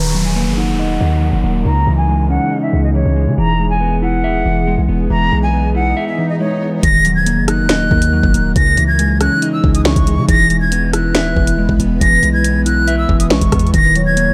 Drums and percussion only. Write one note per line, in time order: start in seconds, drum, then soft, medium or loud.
6.83 kick loud
6.83 closed hi-hat medium
7.05 closed hi-hat medium
7.26 closed hi-hat loud
7.48 cross-stick medium
7.48 closed hi-hat medium
7.69 finger snap medium
7.69 snare loud
7.69 closed hi-hat medium
7.91 kick loud
8.02 closed hi-hat medium
8.23 kick medium
8.34 closed hi-hat medium
8.56 kick loud
8.56 closed hi-hat medium
8.77 closed hi-hat medium
8.99 closed hi-hat loud
9.21 cross-stick medium
9.21 closed hi-hat medium
9.42 closed hi-hat medium
9.64 kick loud
9.75 closed hi-hat medium
9.85 finger snap loud
9.85 snare loud
9.96 kick medium
9.96 closed hi-hat medium
10.07 closed hi-hat medium
10.29 kick loud
10.29 closed hi-hat medium
10.50 closed hi-hat medium
10.72 closed hi-hat loud
10.93 cross-stick medium
10.93 closed hi-hat medium
11.15 finger snap medium
11.15 snare loud
11.15 closed hi-hat medium
11.37 kick loud
11.47 closed hi-hat medium
11.69 kick loud
11.80 closed hi-hat medium
12.01 kick loud
12.01 closed hi-hat medium
12.23 closed hi-hat medium
12.44 closed hi-hat loud
12.66 closed hi-hat medium
12.88 closed hi-hat medium
13.09 kick loud
13.20 closed hi-hat medium
13.30 finger snap loud
13.30 snare loud
13.41 kick loud
13.41 closed hi-hat medium
13.52 kick medium
13.52 cross-stick loud
13.52 closed hi-hat medium
13.59 closed hi-hat medium
13.67 closed hi-hat soft
13.74 kick loud
13.74 closed hi-hat medium
13.95 closed hi-hat medium
14.17 closed hi-hat medium